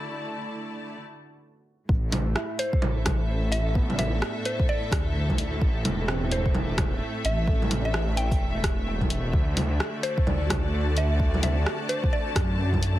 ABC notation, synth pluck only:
X:1
M:4/4
L:1/16
Q:"Swing 16ths" 1/4=129
K:Ador
V:1 name="Synth pluck"
z16 | z6 c6 z2 e2 | z2 e2 z2 c2 d3 z4 z | z6 c6 z2 e2 |
z3 e2 z g3 z6 z | z6 c6 z2 e2 | z2 e2 z2 c2 d3 z4 z |]